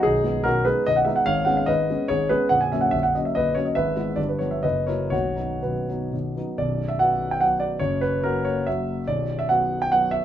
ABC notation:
X:1
M:3/4
L:1/16
Q:1/4=144
K:B
V:1 name="Grand piano"
[DG]4 [FA]2 [GB]2 d f e f | [c^e]2 f e [Bd]4 [Gc]2 [GB]2 | f g e f e f d e [Bd]2 c d | [Be]4 =d B c e [B^d]2 [Ac]2 |
[Fc]4 [FB]6 z2 | [K:Bm] d3 e f3 g f2 d2 | c2 B2 ^A2 c2 e4 | d3 e f3 g f2 e2 |]
V:2 name="Grand piano" clef=bass
[B,,,,B,,,]2 [G,B,D]2 [B,,,,B,,,]2 [G,B,D]2 [B,,,,B,,,]2 [G,B,D]2 | [G,,,G,,]2 [G,B,C]2 [G,,,G,,]2 [G,B,C]2 [G,,,G,,]2 [G,B,C]2 | [A,,,,A,,,]2 [F,A,C]2 [A,,,,A,,,]2 [F,A,C]2 [A,,,,A,,,]2 [F,A,C]2 | [G,,,G,,]2 [G,B,E]2 [=G,,,=G,,]2 [=F,B,=F]2 [^F,,,F,,]2 [^F,A,E]2 |
[B,,,,B,,,]2 [F,B,D]2 [B,,,,B,,,]2 [F,B,D]2 [B,,,,B,,,]2 [F,B,D]2 | [K:Bm] [B,,,,B,,,]4 [F,B,F]4 [F,B,F]4 | [F,,,F,,]4 [F,^A,F]4 [F,A,F]4 | [B,,,,B,,,]4 [F,B,F]4 [F,B,F]4 |]